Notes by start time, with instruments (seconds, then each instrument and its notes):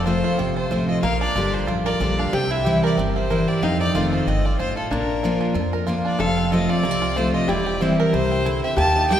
Already playing: upright bass F1, steel-string acoustic guitar F2, five-string banjo C4, resonator guitar played with a steel bar A4
0.05 steel-string acoustic guitar F3 A3 C4 F4, five-string banjo F4, fiddle C5
0.24 five-string banjo F4
0.38 upright bass G1, steel-string acoustic guitar C3, five-string banjo C4
0.56 five-string banjo F4, fiddle C5
0.70 upright bass A1, steel-string acoustic guitar F3 A3 C4 F4, five-string banjo F4
0.88 five-string banjo F4, fiddle D#5
1.02 upright bass A#1, steel-string acoustic guitar A#2, five-string banjo A#3, resonator guitar played with a steel bar A#4, fiddle F5
1.20 five-string banjo D4, fiddle D5
1.35 upright bass G1, steel-string acoustic guitar D3 G3 D4 G4, five-string banjo F4
1.53 five-string banjo F3, fiddle C5
1.67 upright bass A1, steel-string acoustic guitar F2, five-string banjo F4
1.86 five-string banjo A#4, fiddle D5
2.00 upright bass A#1, steel-string acoustic guitar D3 G3 D4 G4, five-string banjo F4
2.19 five-string banjo D4, fiddle F5
2.33 upright bass C2, steel-string acoustic guitar C3, five-string banjo C4, resonator guitar played with a steel bar G4, fiddle G5
2.51 five-string banjo E4, fiddle E5
2.65 steel-string acoustic guitar E3 G3 C4 E4, five-string banjo G4
2.84 five-string banjo A#4, fiddle D5
2.97 upright bass G1, steel-string acoustic guitar G2, five-string banjo C4
3.16 five-string banjo G4, fiddle C5
3.30 steel-string acoustic guitar E3 G3 C4 E4, five-string banjo A#4
3.48 five-string banjo G4, fiddle D5
3.62 upright bass F2, steel-string acoustic guitar F2, five-string banjo C4, resonator guitar played with a steel bar D#4, fiddle F5
3.80 five-string banjo D#4, fiddle D5
3.95 upright bass F1, steel-string acoustic guitar D#3 A3 C4 F4, five-string banjo F4
4.13 five-string banjo F4, fiddle C5
4.26 upright bass G1, steel-string acoustic guitar G2, five-string banjo C4, fiddle D#5
4.45 five-string banjo F4, fiddle D5
4.58 upright bass A1, steel-string acoustic guitar A2, five-string banjo F4, fiddle C5
4.77 five-string banjo F4, fiddle A4
4.90 upright bass A#1, steel-string acoustic guitar A#2, five-string banjo A#3, resonator guitar played with a steel bar D4, fiddle A#4
5.23 steel-string acoustic guitar F3 A#3 D4 F4, five-string banjo F4
5.41 five-string banjo F3
5.54 upright bass F2, steel-string acoustic guitar F2, five-string banjo F4
5.73 five-string banjo A#4
5.87 steel-string acoustic guitar F3 A#3 D4 F4, five-string banjo F4
6.05 five-string banjo D4, fiddle D5
6.19 upright bass F1, steel-string acoustic guitar F2, five-string banjo F4, resonator guitar played with a steel bar A4, fiddle F5
6.37 five-string banjo C4
6.52 steel-string acoustic guitar F3 A3 C4 F4, five-string banjo F4, fiddle D#5
6.69 steel-string acoustic guitar C4 F4, five-string banjo F4, fiddle D5
6.83 upright bass C2, steel-string acoustic guitar C3, five-string banjo A#3
6.91 five-string banjo C4
7.02 five-string banjo F4
7.16 steel-string acoustic guitar F3 A3 C4 F4, five-string banjo F4, fiddle C5
7.34 five-string banjo F4, fiddle D#5
7.48 upright bass E1, steel-string acoustic guitar E2, five-string banjo E4, resonator guitar played with a steel bar G4, fiddle D5
7.66 five-string banjo G4
7.81 steel-string acoustic guitar E3 G3 C4 E4, five-string banjo C4, fiddle C5
7.99 fiddle A#4, five-string banjo A#4
8.13 upright bass C2, steel-string acoustic guitar C3, five-string banjo E4, fiddle C5
8.31 five-string banjo C4
8.46 steel-string acoustic guitar D3, five-string banjo E4
8.64 five-string banjo C4, fiddle E5
8.76 upright bass D#2, steel-string acoustic guitar D#3, five-string banjo A#3, resonator guitar played with a steel bar G4, fiddle A5
8.96 five-string banjo D#4
9.10 steel-string acoustic guitar G3 A#3 D#4 G4, five-string banjo G4, fiddle G5